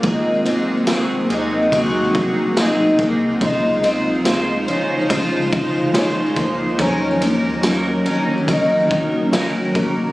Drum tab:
RD |xxxxxxxx|xxxxxxxx|xxxxxxxx|
TB |--x---x-|--x---x-|--x---x-|
SD |--o---o-|--o---o-|--o---o-|
BD |o---oo-o|o---oo-o|o---oo-o|